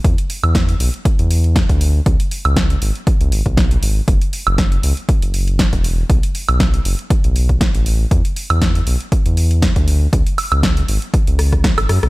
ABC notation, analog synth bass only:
X:1
M:4/4
L:1/16
Q:"Swing 16ths" 1/4=119
K:Emix
V:1 name="Analog synth bass" clef=bass
E,, z2 E,,3 B,,, z2 E,,4 D,,3 | C,, z2 C,,3 G,,, z2 C,, G,,, B,,,3 G,,, z | F,,, z2 F,,,3 C,, z2 F,,,4 E,,,3 | B,,, z2 B,,,3 F,,, z2 B,,,4 A,,,3 |
E,, z2 E,,3 B,,, z2 E,,4 D,,3 | C,, z2 C,,3 G,,, z2 C,,4 G,,, F,, B,,, |]